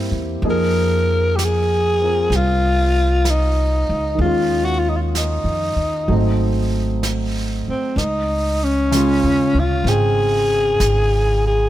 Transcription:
Already playing: A#3 C4 E4 G4
0.11 E2
0.42 F2 F3 A#3 D#4 G#4, brush sweep
0.50 A#4
1.36 G4, brush sweep, snare, hi-hat pedal
1.44 G#4
2.02 C4 F4 A#4
2.30 C2, brush sweep, snare
2.36 F4
3.25 brush sweep, snare, hi-hat pedal
3.30 D#4
3.89 C#2
4.15 D#2 D#3
4.19 G#3 F4, brush sweep
4.23 C#4 F4
4.65 F#4
4.79 F4
4.89 D#4
4.96 F4
5.15 D#4, brush sweep, snare, hi-hat pedal
5.44 F2
5.76 D#2
6.08 G#1 F#3 A3 C4, brush sweep
6.12 D#4
7.03 brush sweep, snare, hi-hat pedal
7.68 C4, muted upright bass stroke
7.96 C#2 D#4, brush sweep, snare
8.64 C#4
8.91 C#3 G#3 C#4, brush sweep, snare, hi-hat pedal
8.96 F4
9.23 D#2
9.54 D2
9.60 F4
9.84 G#1 C4 D#4, brush sweep, snare
9.89 G#4 G5
10.80 G#1, brush sweep, snare, hi-hat pedal
11.47 G#4

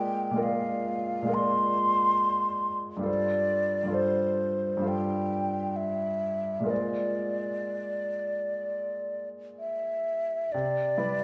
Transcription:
Already playing: A#2 G#3 F4 A#4 D5 G5
0.31 A#2 G#3
0.36 F4 A#4
0.40 D5 F5
1.22 A#2 G#3
1.27 F4 A#4
1.32 D5 C6
2.97 G2 G3
3.01 F4 A4
3.06 C5 D5
3.83 G2 G3 F4
3.90 A4 C5
3.94 C5
4.77 G2 G3
4.82 F4 A4
4.86 C5 G5
5.76 E5
6.59 A#2 G#3
6.64 F4 A#4
6.69 C5 D5
9.59 E5
10.52 C3 D5
10.97 G3 E4 B4 D5

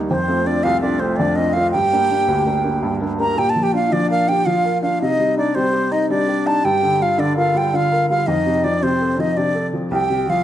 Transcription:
0.10 F2 C4 C5
0.28 A3 C4 F4
0.46 A3 C4 D4 F4 D5
0.63 C2 F4 F5
0.81 A3 C4 D4 F4 D5
1.00 A3 C4 F4 C5
1.16 F2 D4 D5
1.36 A3 C4 F4 D#5
1.53 A3 C4 F4 F5
1.71 G2 G4 G5
1.93 A#3 D4 G4
2.10 A#3 D4 G4
2.28 D2
2.46 A#3 D4 G4
2.64 A#3 D4 G4
2.83 G2
3.01 A#3 D4 G4
3.19 A#3 D4 G4 A#4 A#5
3.37 A#2 G4 G5
3.50 A5
3.56 F3
3.62 G4 G5
3.73 D4 F4 F5
3.92 F3 D4 D5
4.10 A#4 F5
4.28 D4 G4 G5
4.46 F3 F4 F5
4.65 A#4
4.82 D4 F4 F5
5.01 C3 D#4 D#5
5.19 G3
5.38 D4 D#4 D5
5.55 G3 C4 C5
5.73 G4
5.91 D#4 D#5
6.10 G3 D4 D5
6.28 G4
6.47 D#4 A5
6.64 G2 G4 G5
6.82 D3
7.00 G3 F4 F5
7.18 D3 D4 D5
7.37 F4 A#4 F5
7.55 G3 G5
7.73 D3 F4 F5
7.92 A#4
8.10 G3 F4 F5
8.27 F2 D#4 D#5
8.46 C3
8.64 F3 D5
8.82 C3 C4 C5
9.01 A4
9.19 F3 D#4 D#5
9.36 C3 D4 D5
9.55 A4
9.73 F3
9.91 C2 G4 G5
10.10 C3
10.27 F3 F4 F5

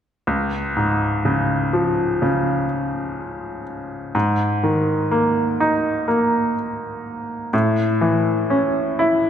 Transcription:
0.27 C#2
0.77 G#2
1.25 C#3
1.73 F3
2.22 C#3
4.15 G#2
4.63 D#3
5.11 A#3
5.60 D#4
6.08 A#3
7.53 A2
8.01 E3
8.50 C#4
8.99 E4

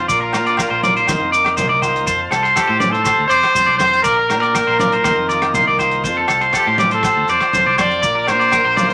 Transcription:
Already playing: F3 F5
0.00 F4
0.08 A#1 A#2 D5 A#5, kick, closed hi-hat, muted conga, maracas
0.21 A#4
0.33 A#2 C4 A#4, cross-stick, closed hi-hat, low agogo, maracas
0.46 D4 D5, closed hi-hat
0.57 F3 A#3 A#4, kick, cross-stick, closed hi-hat, low agogo, maracas
0.70 A#1 C5
0.83 D5, muted nylon-string guitar stroke, closed hi-hat, high conga, maracas
0.97 C5, closed hi-hat
1.07 D#2 D#3 A#3 D#4 C5 D#5, kick, cross-stick, closed hi-hat, muted conga, high conga, low agogo, maracas
1.21 F2
1.32 D#4 D5, closed hi-hat, muted conga, maracas
1.45 cross-stick, closed hi-hat, low agogo
1.57 A#3 D#4 C5, kick, closed hi-hat, high conga, low conga, maracas
1.69 C2 D5
1.82 F4 C5, kick, closed hi-hat, muted conga, low agogo, maracas
1.96 closed hi-hat
2.06 F2 C5 A5, kick, closed hi-hat, muted conga, maracas
2.31 C2 C4 A4, cross-stick, closed hi-hat, low agogo, maracas
2.43 C5, closed hi-hat
2.56 F3 A3 G4 A4, kick, cross-stick, closed hi-hat, low agogo, maracas
2.67 A2 C5
2.80 C4 D5, closed hi-hat, high conga, maracas
2.91 A4 C5, closed hi-hat
3.04 C3 C5, kick, cross-stick, closed hi-hat, muted conga, low agogo, maracas
3.19 D2
3.27 F2 C5 D5, closed hi-hat, muted conga, maracas
3.43 cross-stick, closed hi-hat, low agogo
3.55 F2 F3 A4 C5, kick, closed hi-hat, high conga, maracas
3.66 C2 D5
3.78 F2 C5, kick, cross-stick, closed hi-hat, muted conga, high conga, low agogo, maracas
3.82 A3
3.93 closed hi-hat
4.02 A#1 A#2 A#4 D5 F5 A#5, kick, closed hi-hat, muted conga, maracas
4.17 A#4
4.29 A#2 D4 A#4, cross-stick, closed hi-hat, low agogo, maracas
4.40 A#4 D5, closed hi-hat
4.55 F3 A#3 A#4, kick, cross-stick, closed hi-hat, low agogo, maracas
4.67 A#1 C5
4.79 F4 D5, closed hi-hat, high conga, maracas
4.92 C5, closed hi-hat
5.04 D#2 D#3 C5 D#5, kick, cross-stick, closed hi-hat, muted conga, high conga, low agogo, maracas
5.17 F2
5.29 F4 D5, closed hi-hat, muted conga, maracas
5.42 cross-stick, closed hi-hat, low agogo
5.54 A#3 D#4 C5, kick, closed hi-hat, high conga, low conga, maracas
5.67 C2 D5
5.79 F4 C5, kick, closed hi-hat, muted conga, low agogo, maracas
5.91 closed hi-hat
6.04 F2 C5 A5, kick, closed hi-hat, muted conga, maracas
6.17 A4
6.28 C2 A4, cross-stick, closed hi-hat, low agogo, maracas
6.41 C5, closed hi-hat
6.53 F3 A3 A4, kick, cross-stick, closed hi-hat, low agogo, maracas
6.57 G4
6.67 A2 C5
6.78 C4 D5, closed hi-hat, high conga, maracas
6.91 A4 C5, closed hi-hat
7.03 C3 C5, kick, cross-stick, closed hi-hat, muted conga, low agogo, maracas
7.16 D2
7.28 F2 C4 C5 D5, closed hi-hat, muted conga, maracas
7.40 cross-stick, closed hi-hat, low agogo
7.53 F2 F3 A4 C5, kick, closed hi-hat, high conga, maracas
7.66 C2 D5
7.78 F2 A3 C5 D5, kick, cross-stick, closed hi-hat, muted conga, high conga, low agogo, maracas
7.91 closed hi-hat
8.02 A#1 A#2 D5 A#5, kick, closed hi-hat, muted conga, maracas
8.15 A#4
8.27 A#2 D4 A#4 C5, cross-stick, closed hi-hat, low agogo, maracas
8.39 D5, closed hi-hat
8.52 F3 A#3 A#4, kick, cross-stick, closed hi-hat, low agogo, maracas
8.65 A#1 C5
8.77 F4 D5, closed hi-hat, high conga, maracas
8.89 C5, closed hi-hat

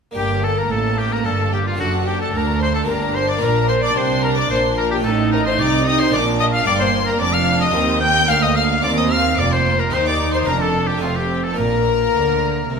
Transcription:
0.11 A#3 D4 G4
0.16 G1 G2 A#3 G4 G5
0.43 A4 A5
0.56 A#4 A#5
0.69 A1 A2 A4 A5
0.98 G4 G5
1.11 A#4 A#5
1.24 G1 G2 A4 A5
1.52 G4 G5
1.65 F4 F5
1.74 C4 D4 A4
1.78 F#1 F#2 D4 F#4 F#5
2.05 G4 G5
2.19 A4 A5
2.32 D2 A#4 A#5
2.37 A#4
2.59 C5 C6
2.73 A4 A5
2.83 A#3 D4 G4
2.87 G1 G2 D4 A#4 A#5
3.14 C5 C6
3.28 D5 D6
3.36 A#3 D4 F4
3.41 A#1 A#2 D4 A#4 A#5
3.68 C5 C6
3.82 D5 D6
3.95 C2 C3 C5 C6
4.23 A#4 A#5
4.37 D5 D6
4.50 A#1 A#2 C5 C6
4.77 A#4 A#5
4.91 G4 G5
4.99 C4 D#4 F4
5.04 A1 A2 D#4 A4 A5
5.32 A#4 A#5
5.46 C5 C6
5.59 C2 C3 D5 D6
5.87 D#5 D#6
6.00 C5 C6
6.10 A#1 A#2 A#3 D4 F4 D5 D6
6.14 D4
6.38 D#5 D#6
6.52 F5 F6
6.62 A#3 D4 G4 D6
6.67 G1 G2 A#3 D5
6.80 C5 C6
7.06 A#4 A#5
7.19 F1 F2 D4 D5 D6
7.33 F5 F6
7.60 D#5 D#6
7.70 A#3 G4 A#4
7.75 D#2 C4
8.00 A#3 G5 G6
8.26 D2 F4 A#4 F5 F6
8.30 A#3
8.42 D#5 D#6
8.56 F5 F6
8.82 D#2 C4 D5 D6
8.97 D#5 D#6
9.09 F5 F6
9.37 F1 F2 A#3 D5 D6
9.50 C5 C6
9.78 A#4 A#5
9.90 D#2 D#4 G4 C5 C6
9.94 C5
10.05 D5 D6
10.32 C5 C6
10.42 A#3 D4 F4 A#5
10.47 F1 F2 D4 A#4
10.60 A4 A5
10.88 G4 G5
10.97 A3 D#4 F4
11.02 F1 F2 C4 F4 F5
11.15 G4 G5
11.44 A4 A5
11.53 A#3 D4 F4
11.57 A#1 A#2 A#3 A#4 A#5
12.14 D2 D3
12.70 C2 C3

